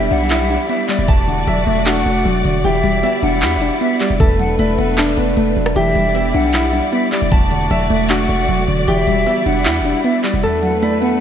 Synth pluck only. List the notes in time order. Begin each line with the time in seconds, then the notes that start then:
Already playing: E3 G3 B3
0.11 D4
0.30 E4
0.50 D4
0.69 B3
0.89 G3
1.08 E2
1.28 D3
1.47 F#3
1.67 A3
1.86 D4
2.06 A3
2.25 F#3
2.45 D3
2.64 E3
2.84 G3
3.03 B3
3.23 D4
3.42 E4
3.62 D4
3.81 B3
4.01 G3
4.20 E2
4.40 F#3
4.59 A3
4.79 B3
4.98 D4
5.17 B3
5.37 A3
5.56 F#3
5.76 E3
5.95 G3
6.15 B3
6.34 D4
6.54 E4
6.73 D4
6.93 B3
7.12 G3
7.32 E2
7.51 D3
7.71 F#3
7.90 A3
8.10 D4
8.29 A3
8.49 F#3
8.68 D3
8.88 E3
9.07 G3
9.27 B3
9.46 D4
9.65 E4
9.85 D4
10.04 B3
10.24 G3
10.44 E2
10.63 F#3
10.82 A3
11.02 B3